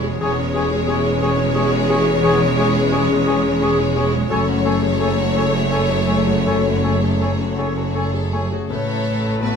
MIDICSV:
0, 0, Header, 1, 12, 480
1, 0, Start_track
1, 0, Key_signature, 3, "minor"
1, 0, Tempo, 674157
1, 156, Time_signature, 3, 2, 24, 8
1, 2075, Tempo, 695249
1, 3515, Tempo, 710900
1, 3995, Tempo, 746269
1, 5915, Tempo, 710059
1, 6499, End_track
2, 0, Start_track
2, 0, Title_t, "Flute"
2, 0, Program_c, 0, 73
2, 160, Note_on_c, 0, 80, 87
2, 213, Note_off_c, 0, 80, 0
2, 396, Note_on_c, 0, 80, 82
2, 449, Note_off_c, 0, 80, 0
2, 629, Note_on_c, 0, 80, 77
2, 683, Note_off_c, 0, 80, 0
2, 867, Note_on_c, 0, 80, 81
2, 921, Note_off_c, 0, 80, 0
2, 1110, Note_on_c, 0, 80, 77
2, 1164, Note_off_c, 0, 80, 0
2, 1347, Note_on_c, 0, 80, 75
2, 1402, Note_off_c, 0, 80, 0
2, 1592, Note_on_c, 0, 80, 82
2, 1646, Note_off_c, 0, 80, 0
2, 1830, Note_on_c, 0, 80, 80
2, 1885, Note_off_c, 0, 80, 0
2, 2075, Note_on_c, 0, 80, 84
2, 2129, Note_off_c, 0, 80, 0
2, 2318, Note_on_c, 0, 80, 79
2, 2372, Note_off_c, 0, 80, 0
2, 2556, Note_on_c, 0, 80, 87
2, 2610, Note_off_c, 0, 80, 0
2, 2794, Note_on_c, 0, 80, 73
2, 2848, Note_off_c, 0, 80, 0
2, 3040, Note_on_c, 0, 80, 85
2, 3094, Note_off_c, 0, 80, 0
2, 3277, Note_on_c, 0, 80, 82
2, 3331, Note_off_c, 0, 80, 0
2, 3523, Note_on_c, 0, 80, 74
2, 3575, Note_off_c, 0, 80, 0
2, 3754, Note_on_c, 0, 80, 70
2, 3809, Note_off_c, 0, 80, 0
2, 3993, Note_on_c, 0, 80, 76
2, 4046, Note_off_c, 0, 80, 0
2, 4228, Note_on_c, 0, 80, 62
2, 4283, Note_off_c, 0, 80, 0
2, 4473, Note_on_c, 0, 80, 73
2, 4529, Note_off_c, 0, 80, 0
2, 4718, Note_on_c, 0, 80, 68
2, 4772, Note_off_c, 0, 80, 0
2, 4965, Note_on_c, 0, 80, 72
2, 5018, Note_off_c, 0, 80, 0
2, 5201, Note_on_c, 0, 80, 65
2, 5254, Note_off_c, 0, 80, 0
2, 5438, Note_on_c, 0, 80, 66
2, 5492, Note_off_c, 0, 80, 0
2, 5673, Note_on_c, 0, 80, 60
2, 5727, Note_off_c, 0, 80, 0
2, 5915, Note_on_c, 0, 81, 77
2, 6499, Note_off_c, 0, 81, 0
2, 6499, End_track
3, 0, Start_track
3, 0, Title_t, "Oboe"
3, 0, Program_c, 1, 68
3, 160, Note_on_c, 1, 73, 93
3, 266, Note_off_c, 1, 73, 0
3, 399, Note_on_c, 1, 73, 75
3, 505, Note_off_c, 1, 73, 0
3, 638, Note_on_c, 1, 73, 77
3, 744, Note_off_c, 1, 73, 0
3, 870, Note_on_c, 1, 73, 83
3, 977, Note_off_c, 1, 73, 0
3, 1107, Note_on_c, 1, 73, 81
3, 1215, Note_off_c, 1, 73, 0
3, 1354, Note_on_c, 1, 73, 80
3, 1461, Note_off_c, 1, 73, 0
3, 1591, Note_on_c, 1, 73, 93
3, 1699, Note_off_c, 1, 73, 0
3, 1834, Note_on_c, 1, 73, 81
3, 1943, Note_off_c, 1, 73, 0
3, 2074, Note_on_c, 1, 73, 78
3, 2182, Note_off_c, 1, 73, 0
3, 2313, Note_on_c, 1, 73, 82
3, 2422, Note_off_c, 1, 73, 0
3, 2556, Note_on_c, 1, 73, 82
3, 2664, Note_off_c, 1, 73, 0
3, 2797, Note_on_c, 1, 73, 72
3, 2904, Note_off_c, 1, 73, 0
3, 3038, Note_on_c, 1, 73, 89
3, 3145, Note_off_c, 1, 73, 0
3, 3270, Note_on_c, 1, 73, 76
3, 3379, Note_off_c, 1, 73, 0
3, 3517, Note_on_c, 1, 73, 65
3, 3623, Note_off_c, 1, 73, 0
3, 3757, Note_on_c, 1, 73, 74
3, 3865, Note_off_c, 1, 73, 0
3, 3996, Note_on_c, 1, 73, 69
3, 4099, Note_off_c, 1, 73, 0
3, 4232, Note_on_c, 1, 73, 61
3, 4335, Note_off_c, 1, 73, 0
3, 4478, Note_on_c, 1, 73, 73
3, 4581, Note_off_c, 1, 73, 0
3, 4716, Note_on_c, 1, 73, 65
3, 4819, Note_off_c, 1, 73, 0
3, 4952, Note_on_c, 1, 73, 57
3, 5055, Note_off_c, 1, 73, 0
3, 5203, Note_on_c, 1, 73, 67
3, 5306, Note_off_c, 1, 73, 0
3, 5432, Note_on_c, 1, 73, 63
3, 5535, Note_off_c, 1, 73, 0
3, 5676, Note_on_c, 1, 73, 64
3, 5779, Note_off_c, 1, 73, 0
3, 5921, Note_on_c, 1, 71, 71
3, 6499, Note_off_c, 1, 71, 0
3, 6499, End_track
4, 0, Start_track
4, 0, Title_t, "Violin section"
4, 0, Program_c, 2, 48
4, 0, Note_on_c, 2, 73, 86
4, 140, Note_off_c, 2, 73, 0
4, 149, Note_on_c, 2, 73, 97
4, 3004, Note_off_c, 2, 73, 0
4, 3028, Note_on_c, 2, 73, 101
4, 5753, Note_off_c, 2, 73, 0
4, 5918, Note_on_c, 2, 73, 78
4, 6372, Note_off_c, 2, 73, 0
4, 6399, Note_on_c, 2, 71, 76
4, 6499, Note_off_c, 2, 71, 0
4, 6499, End_track
5, 0, Start_track
5, 0, Title_t, "Clarinet"
5, 0, Program_c, 3, 71
5, 149, Note_on_c, 3, 68, 83
5, 257, Note_off_c, 3, 68, 0
5, 382, Note_on_c, 3, 68, 85
5, 492, Note_off_c, 3, 68, 0
5, 616, Note_on_c, 3, 68, 79
5, 727, Note_off_c, 3, 68, 0
5, 863, Note_on_c, 3, 68, 75
5, 972, Note_off_c, 3, 68, 0
5, 1100, Note_on_c, 3, 68, 83
5, 1210, Note_off_c, 3, 68, 0
5, 1343, Note_on_c, 3, 68, 78
5, 1453, Note_off_c, 3, 68, 0
5, 1592, Note_on_c, 3, 68, 95
5, 1700, Note_off_c, 3, 68, 0
5, 1839, Note_on_c, 3, 68, 84
5, 1947, Note_off_c, 3, 68, 0
5, 2078, Note_on_c, 3, 68, 75
5, 2185, Note_off_c, 3, 68, 0
5, 2315, Note_on_c, 3, 68, 80
5, 2424, Note_off_c, 3, 68, 0
5, 2566, Note_on_c, 3, 68, 81
5, 2672, Note_off_c, 3, 68, 0
5, 2794, Note_on_c, 3, 68, 74
5, 2902, Note_off_c, 3, 68, 0
5, 3034, Note_on_c, 3, 69, 89
5, 3142, Note_off_c, 3, 69, 0
5, 3271, Note_on_c, 3, 69, 75
5, 3380, Note_off_c, 3, 69, 0
5, 3520, Note_on_c, 3, 69, 74
5, 3626, Note_off_c, 3, 69, 0
5, 3761, Note_on_c, 3, 69, 69
5, 3868, Note_off_c, 3, 69, 0
5, 3997, Note_on_c, 3, 69, 70
5, 4100, Note_off_c, 3, 69, 0
5, 4226, Note_on_c, 3, 69, 60
5, 4329, Note_off_c, 3, 69, 0
5, 4479, Note_on_c, 3, 69, 70
5, 4582, Note_off_c, 3, 69, 0
5, 4717, Note_on_c, 3, 69, 65
5, 4820, Note_off_c, 3, 69, 0
5, 4962, Note_on_c, 3, 69, 62
5, 5065, Note_off_c, 3, 69, 0
5, 5197, Note_on_c, 3, 69, 66
5, 5300, Note_off_c, 3, 69, 0
5, 5435, Note_on_c, 3, 69, 68
5, 5538, Note_off_c, 3, 69, 0
5, 5673, Note_on_c, 3, 69, 57
5, 5776, Note_off_c, 3, 69, 0
5, 5916, Note_on_c, 3, 69, 79
5, 6499, Note_off_c, 3, 69, 0
5, 6499, End_track
6, 0, Start_track
6, 0, Title_t, "Violin section"
6, 0, Program_c, 4, 48
6, 34, Note_on_c, 4, 61, 80
6, 155, Note_off_c, 4, 61, 0
6, 158, Note_on_c, 4, 59, 84
6, 268, Note_off_c, 4, 59, 0
6, 274, Note_on_c, 4, 61, 84
6, 393, Note_off_c, 4, 61, 0
6, 395, Note_on_c, 4, 64, 85
6, 512, Note_off_c, 4, 64, 0
6, 513, Note_on_c, 4, 68, 74
6, 631, Note_off_c, 4, 68, 0
6, 632, Note_on_c, 4, 64, 83
6, 751, Note_off_c, 4, 64, 0
6, 755, Note_on_c, 4, 61, 81
6, 872, Note_off_c, 4, 61, 0
6, 878, Note_on_c, 4, 59, 79
6, 988, Note_on_c, 4, 61, 78
6, 994, Note_off_c, 4, 59, 0
6, 1108, Note_off_c, 4, 61, 0
6, 1111, Note_on_c, 4, 64, 85
6, 1228, Note_on_c, 4, 68, 83
6, 1230, Note_off_c, 4, 64, 0
6, 1349, Note_off_c, 4, 68, 0
6, 1349, Note_on_c, 4, 64, 88
6, 1465, Note_on_c, 4, 61, 81
6, 1470, Note_off_c, 4, 64, 0
6, 1587, Note_on_c, 4, 59, 82
6, 1589, Note_off_c, 4, 61, 0
6, 1701, Note_off_c, 4, 59, 0
6, 1706, Note_on_c, 4, 61, 84
6, 1824, Note_on_c, 4, 64, 89
6, 1829, Note_off_c, 4, 61, 0
6, 1949, Note_off_c, 4, 64, 0
6, 1949, Note_on_c, 4, 68, 81
6, 2073, Note_off_c, 4, 68, 0
6, 2074, Note_on_c, 4, 64, 88
6, 2190, Note_on_c, 4, 61, 78
6, 2194, Note_off_c, 4, 64, 0
6, 2312, Note_off_c, 4, 61, 0
6, 2314, Note_on_c, 4, 59, 73
6, 2432, Note_on_c, 4, 61, 82
6, 2435, Note_off_c, 4, 59, 0
6, 2554, Note_off_c, 4, 61, 0
6, 2555, Note_on_c, 4, 64, 86
6, 2676, Note_off_c, 4, 64, 0
6, 2684, Note_on_c, 4, 68, 78
6, 2799, Note_on_c, 4, 64, 88
6, 2800, Note_off_c, 4, 68, 0
6, 2917, Note_off_c, 4, 64, 0
6, 2917, Note_on_c, 4, 61, 78
6, 3027, Note_off_c, 4, 61, 0
6, 3035, Note_on_c, 4, 61, 89
6, 3146, Note_off_c, 4, 61, 0
6, 3159, Note_on_c, 4, 66, 79
6, 3276, Note_off_c, 4, 66, 0
6, 3276, Note_on_c, 4, 68, 76
6, 3395, Note_off_c, 4, 68, 0
6, 3396, Note_on_c, 4, 69, 68
6, 3514, Note_on_c, 4, 68, 76
6, 3516, Note_off_c, 4, 69, 0
6, 3632, Note_on_c, 4, 66, 73
6, 3633, Note_off_c, 4, 68, 0
6, 3747, Note_on_c, 4, 61, 70
6, 3752, Note_off_c, 4, 66, 0
6, 3867, Note_on_c, 4, 66, 71
6, 3871, Note_off_c, 4, 61, 0
6, 3988, Note_on_c, 4, 68, 78
6, 3992, Note_off_c, 4, 66, 0
6, 4109, Note_off_c, 4, 68, 0
6, 4109, Note_on_c, 4, 69, 71
6, 4229, Note_off_c, 4, 69, 0
6, 4236, Note_on_c, 4, 68, 68
6, 4350, Note_on_c, 4, 66, 68
6, 4354, Note_off_c, 4, 68, 0
6, 4473, Note_on_c, 4, 61, 72
6, 4474, Note_off_c, 4, 66, 0
6, 4588, Note_off_c, 4, 61, 0
6, 4599, Note_on_c, 4, 66, 69
6, 4713, Note_on_c, 4, 68, 64
6, 4720, Note_off_c, 4, 66, 0
6, 4836, Note_on_c, 4, 69, 61
6, 4837, Note_off_c, 4, 68, 0
6, 4956, Note_on_c, 4, 68, 68
6, 4958, Note_off_c, 4, 69, 0
6, 5076, Note_on_c, 4, 66, 62
6, 5078, Note_off_c, 4, 68, 0
6, 5194, Note_on_c, 4, 61, 61
6, 5197, Note_off_c, 4, 66, 0
6, 5315, Note_off_c, 4, 61, 0
6, 5315, Note_on_c, 4, 66, 66
6, 5433, Note_on_c, 4, 68, 72
6, 5435, Note_off_c, 4, 66, 0
6, 5553, Note_on_c, 4, 69, 66
6, 5554, Note_off_c, 4, 68, 0
6, 5675, Note_off_c, 4, 69, 0
6, 5676, Note_on_c, 4, 68, 71
6, 5797, Note_off_c, 4, 68, 0
6, 5799, Note_on_c, 4, 66, 65
6, 5912, Note_on_c, 4, 69, 75
6, 5916, Note_off_c, 4, 66, 0
6, 6369, Note_off_c, 4, 69, 0
6, 6398, Note_on_c, 4, 66, 73
6, 6499, Note_off_c, 4, 66, 0
6, 6499, End_track
7, 0, Start_track
7, 0, Title_t, "French horn section"
7, 0, Program_c, 5, 60
7, 163, Note_on_c, 5, 61, 94
7, 167, Note_on_c, 5, 68, 96
7, 3011, Note_off_c, 5, 61, 0
7, 3012, Note_off_c, 5, 68, 0
7, 3045, Note_on_c, 5, 57, 99
7, 3047, Note_on_c, 5, 69, 91
7, 5679, Note_off_c, 5, 69, 0
7, 5704, Note_off_c, 5, 57, 0
7, 5907, Note_on_c, 5, 71, 83
7, 5911, Note_on_c, 5, 57, 75
7, 6499, Note_off_c, 5, 57, 0
7, 6499, Note_off_c, 5, 71, 0
7, 6499, End_track
8, 0, Start_track
8, 0, Title_t, "Felt piano"
8, 0, Program_c, 6, 0
8, 0, Control_c, 6, 64, 127
8, 0, Note_on_c, 6, 40, 83
8, 0, Note_on_c, 6, 56, 63
8, 0, Note_on_c, 6, 61, 77
8, 0, Note_on_c, 6, 68, 71
8, 29, Note_off_c, 6, 68, 0
8, 29, Note_on_c, 6, 68, 77
8, 106, Note_off_c, 6, 56, 0
8, 123, Note_off_c, 6, 40, 0
8, 148, Note_on_c, 6, 40, 82
8, 153, Note_off_c, 6, 68, 0
8, 167, Control_c, 6, 64, 0
8, 171, Note_off_c, 6, 61, 0
8, 267, Control_c, 6, 64, 127
8, 271, Note_on_c, 6, 61, 67
8, 386, Note_on_c, 6, 56, 72
8, 462, Note_off_c, 6, 61, 0
8, 507, Note_on_c, 6, 68, 71
8, 580, Note_off_c, 6, 56, 0
8, 627, Note_on_c, 6, 56, 68
8, 700, Note_off_c, 6, 68, 0
8, 751, Note_on_c, 6, 61, 70
8, 820, Note_off_c, 6, 56, 0
8, 873, Note_on_c, 6, 68, 78
8, 942, Note_off_c, 6, 61, 0
8, 998, Note_on_c, 6, 61, 73
8, 1063, Note_off_c, 6, 68, 0
8, 1109, Note_on_c, 6, 56, 73
8, 1185, Note_off_c, 6, 61, 0
8, 1230, Note_on_c, 6, 68, 72
8, 1301, Note_off_c, 6, 56, 0
8, 1351, Note_on_c, 6, 56, 66
8, 1422, Note_off_c, 6, 68, 0
8, 1471, Note_on_c, 6, 68, 74
8, 1543, Note_off_c, 6, 56, 0
8, 1558, Note_off_c, 6, 40, 0
8, 1595, Note_on_c, 6, 40, 93
8, 1605, Control_c, 6, 64, 0
8, 1664, Note_off_c, 6, 68, 0
8, 1710, Note_on_c, 6, 61, 67
8, 1730, Control_c, 6, 64, 127
8, 1832, Note_on_c, 6, 56, 68
8, 1904, Note_off_c, 6, 61, 0
8, 1958, Note_on_c, 6, 68, 66
8, 2026, Note_off_c, 6, 56, 0
8, 2081, Note_on_c, 6, 56, 67
8, 2148, Note_off_c, 6, 68, 0
8, 2196, Note_on_c, 6, 61, 72
8, 2269, Note_off_c, 6, 56, 0
8, 2316, Note_on_c, 6, 68, 70
8, 2388, Note_off_c, 6, 61, 0
8, 2434, Note_on_c, 6, 61, 73
8, 2509, Note_off_c, 6, 68, 0
8, 2557, Note_on_c, 6, 56, 73
8, 2628, Note_off_c, 6, 61, 0
8, 2675, Note_on_c, 6, 68, 67
8, 2749, Note_off_c, 6, 56, 0
8, 2800, Note_on_c, 6, 56, 57
8, 2867, Note_off_c, 6, 68, 0
8, 2910, Note_on_c, 6, 68, 70
8, 2989, Note_off_c, 6, 56, 0
8, 3009, Note_off_c, 6, 40, 0
8, 3032, Note_off_c, 6, 68, 0
8, 3033, Note_on_c, 6, 42, 90
8, 3048, Control_c, 6, 64, 0
8, 3156, Note_on_c, 6, 61, 72
8, 3165, Control_c, 6, 64, 127
8, 3276, Note_on_c, 6, 57, 69
8, 3347, Note_off_c, 6, 61, 0
8, 3396, Note_on_c, 6, 68, 61
8, 3468, Note_off_c, 6, 57, 0
8, 3516, Note_on_c, 6, 57, 59
8, 3587, Note_off_c, 6, 68, 0
8, 3634, Note_on_c, 6, 61, 64
8, 3706, Note_off_c, 6, 57, 0
8, 3749, Note_on_c, 6, 68, 61
8, 3825, Note_off_c, 6, 61, 0
8, 3870, Note_on_c, 6, 69, 64
8, 3944, Note_off_c, 6, 68, 0
8, 3988, Note_on_c, 6, 61, 61
8, 4064, Note_off_c, 6, 69, 0
8, 4109, Note_on_c, 6, 68, 61
8, 4181, Note_off_c, 6, 61, 0
8, 4232, Note_on_c, 6, 57, 52
8, 4302, Note_off_c, 6, 68, 0
8, 4355, Note_on_c, 6, 68, 56
8, 4425, Note_off_c, 6, 57, 0
8, 4448, Note_off_c, 6, 42, 0
8, 4480, Note_on_c, 6, 42, 74
8, 4488, Control_c, 6, 64, 0
8, 4550, Note_off_c, 6, 68, 0
8, 4600, Note_on_c, 6, 61, 55
8, 4615, Control_c, 6, 64, 127
8, 4721, Note_on_c, 6, 57, 60
8, 4793, Note_off_c, 6, 61, 0
8, 4845, Note_on_c, 6, 68, 58
8, 4913, Note_off_c, 6, 57, 0
8, 4964, Note_on_c, 6, 57, 55
8, 5034, Note_off_c, 6, 68, 0
8, 5081, Note_on_c, 6, 61, 54
8, 5153, Note_off_c, 6, 57, 0
8, 5204, Note_on_c, 6, 68, 63
8, 5271, Note_off_c, 6, 61, 0
8, 5322, Note_on_c, 6, 69, 58
8, 5391, Note_off_c, 6, 68, 0
8, 5440, Note_on_c, 6, 61, 53
8, 5510, Note_off_c, 6, 69, 0
8, 5560, Note_on_c, 6, 68, 57
8, 5630, Note_off_c, 6, 61, 0
8, 5679, Note_on_c, 6, 57, 53
8, 5751, Note_off_c, 6, 68, 0
8, 5804, Note_on_c, 6, 68, 57
8, 5870, Note_off_c, 6, 57, 0
8, 5892, Note_off_c, 6, 42, 0
8, 5919, Note_off_c, 6, 68, 0
8, 5919, Note_on_c, 6, 45, 76
8, 5928, Control_c, 6, 64, 0
8, 6042, Control_c, 6, 64, 127
8, 6385, Note_off_c, 6, 45, 0
8, 6408, Note_on_c, 6, 57, 60
8, 6409, Note_on_c, 6, 59, 58
8, 6413, Note_on_c, 6, 69, 60
8, 6499, Note_off_c, 6, 57, 0
8, 6499, Note_off_c, 6, 59, 0
8, 6499, Note_off_c, 6, 69, 0
8, 6499, End_track
9, 0, Start_track
9, 0, Title_t, "Harp"
9, 0, Program_c, 7, 46
9, 0, Note_on_c, 7, 52, 90
9, 0, Note_on_c, 7, 56, 68
9, 0, Note_on_c, 7, 61, 76
9, 0, Note_on_c, 7, 64, 69
9, 0, Note_on_c, 7, 68, 64
9, 0, Note_on_c, 7, 73, 71
9, 0, Note_on_c, 7, 80, 74
9, 24, Note_on_c, 7, 59, 73
9, 138, Note_off_c, 7, 52, 0
9, 146, Note_on_c, 7, 52, 92
9, 259, Note_off_c, 7, 61, 0
9, 267, Note_on_c, 7, 61, 70
9, 384, Note_on_c, 7, 71, 71
9, 492, Note_off_c, 7, 61, 0
9, 501, Note_on_c, 7, 61, 71
9, 610, Note_off_c, 7, 73, 0
9, 618, Note_on_c, 7, 73, 76
9, 733, Note_off_c, 7, 80, 0
9, 742, Note_on_c, 7, 80, 74
9, 857, Note_off_c, 7, 73, 0
9, 866, Note_on_c, 7, 73, 81
9, 975, Note_off_c, 7, 80, 0
9, 984, Note_on_c, 7, 80, 79
9, 1096, Note_off_c, 7, 73, 0
9, 1105, Note_on_c, 7, 73, 71
9, 1333, Note_off_c, 7, 56, 0
9, 1342, Note_off_c, 7, 61, 0
9, 1581, Note_off_c, 7, 52, 0
9, 1590, Note_on_c, 7, 52, 97
9, 1702, Note_off_c, 7, 68, 0
9, 1710, Note_on_c, 7, 61, 73
9, 1945, Note_off_c, 7, 61, 0
9, 1954, Note_on_c, 7, 61, 70
9, 2063, Note_off_c, 7, 73, 0
9, 2072, Note_on_c, 7, 73, 79
9, 2183, Note_off_c, 7, 80, 0
9, 2191, Note_on_c, 7, 80, 77
9, 2307, Note_off_c, 7, 73, 0
9, 2315, Note_on_c, 7, 73, 80
9, 2428, Note_off_c, 7, 80, 0
9, 2436, Note_on_c, 7, 80, 80
9, 2546, Note_off_c, 7, 64, 0
9, 2549, Note_off_c, 7, 73, 0
9, 2558, Note_on_c, 7, 73, 77
9, 2778, Note_off_c, 7, 59, 0
9, 2788, Note_off_c, 7, 61, 0
9, 2797, Note_on_c, 7, 61, 76
9, 2914, Note_on_c, 7, 54, 73
9, 3037, Note_on_c, 7, 42, 88
9, 3053, Note_off_c, 7, 52, 0
9, 3127, Note_off_c, 7, 71, 0
9, 3152, Note_on_c, 7, 57, 67
9, 3262, Note_off_c, 7, 61, 0
9, 3270, Note_on_c, 7, 61, 66
9, 3395, Note_on_c, 7, 66, 60
9, 3511, Note_on_c, 7, 69, 72
9, 3626, Note_off_c, 7, 73, 0
9, 3634, Note_on_c, 7, 73, 62
9, 3747, Note_off_c, 7, 80, 0
9, 3755, Note_on_c, 7, 80, 73
9, 3871, Note_off_c, 7, 73, 0
9, 3879, Note_on_c, 7, 73, 73
9, 3992, Note_off_c, 7, 69, 0
9, 4000, Note_on_c, 7, 69, 66
9, 4109, Note_off_c, 7, 61, 0
9, 4117, Note_on_c, 7, 61, 65
9, 4225, Note_off_c, 7, 57, 0
9, 4232, Note_on_c, 7, 57, 63
9, 4358, Note_on_c, 7, 49, 60
9, 4472, Note_off_c, 7, 42, 0
9, 4480, Note_on_c, 7, 42, 78
9, 4596, Note_off_c, 7, 57, 0
9, 4604, Note_on_c, 7, 57, 59
9, 4718, Note_off_c, 7, 61, 0
9, 4726, Note_on_c, 7, 61, 58
9, 4957, Note_off_c, 7, 69, 0
9, 4964, Note_on_c, 7, 69, 69
9, 5073, Note_off_c, 7, 73, 0
9, 5080, Note_on_c, 7, 73, 62
9, 5190, Note_off_c, 7, 80, 0
9, 5197, Note_on_c, 7, 80, 66
9, 5309, Note_off_c, 7, 73, 0
9, 5317, Note_on_c, 7, 73, 62
9, 5486, Note_off_c, 7, 54, 0
9, 5544, Note_off_c, 7, 61, 0
9, 5552, Note_on_c, 7, 61, 56
9, 5669, Note_off_c, 7, 57, 0
9, 5676, Note_on_c, 7, 57, 60
9, 5793, Note_off_c, 7, 49, 0
9, 5801, Note_on_c, 7, 49, 57
9, 5921, Note_on_c, 7, 45, 88
9, 5933, Note_off_c, 7, 61, 0
9, 5934, Note_off_c, 7, 80, 0
9, 5935, Note_off_c, 7, 66, 0
9, 5935, Note_off_c, 7, 73, 0
9, 5937, Note_off_c, 7, 49, 0
9, 5938, Note_off_c, 7, 42, 0
9, 6084, Note_on_c, 7, 52, 59
9, 6237, Note_off_c, 7, 57, 0
9, 6245, Note_on_c, 7, 57, 54
9, 6402, Note_on_c, 7, 59, 60
9, 6499, Note_off_c, 7, 45, 0
9, 6499, Note_off_c, 7, 52, 0
9, 6499, Note_off_c, 7, 57, 0
9, 6499, Note_off_c, 7, 59, 0
9, 6499, Note_off_c, 7, 69, 0
9, 6499, End_track
10, 0, Start_track
10, 0, Title_t, "Viola section"
10, 0, Program_c, 8, 48
10, 0, Note_on_c, 8, 56, 87
10, 129, Note_off_c, 8, 56, 0
10, 162, Note_on_c, 8, 56, 109
10, 3010, Note_off_c, 8, 56, 0
10, 3037, Note_on_c, 8, 57, 95
10, 5782, Note_off_c, 8, 57, 0
10, 5917, Note_on_c, 8, 57, 82
10, 6499, Note_off_c, 8, 57, 0
10, 6499, End_track
11, 0, Start_track
11, 0, Title_t, "Cello section"
11, 0, Program_c, 10, 48
11, 0, Note_on_c, 10, 40, 83
11, 127, Note_off_c, 10, 40, 0
11, 160, Note_on_c, 10, 40, 103
11, 3009, Note_off_c, 10, 40, 0
11, 3036, Note_on_c, 10, 42, 97
11, 5756, Note_off_c, 10, 42, 0
11, 5918, Note_on_c, 10, 45, 90
11, 6499, Note_off_c, 10, 45, 0
11, 6499, End_track
12, 0, Start_track
12, 0, Title_t, "Double bass section"
12, 0, Program_c, 11, 48
12, 0, Note_on_c, 11, 28, 86
12, 129, Note_off_c, 11, 28, 0
12, 158, Note_on_c, 11, 28, 98
12, 3008, Note_off_c, 11, 28, 0
12, 3037, Note_on_c, 11, 30, 99
12, 5757, Note_off_c, 11, 30, 0
12, 5921, Note_on_c, 11, 33, 92
12, 6499, Note_off_c, 11, 33, 0
12, 6499, End_track
0, 0, End_of_file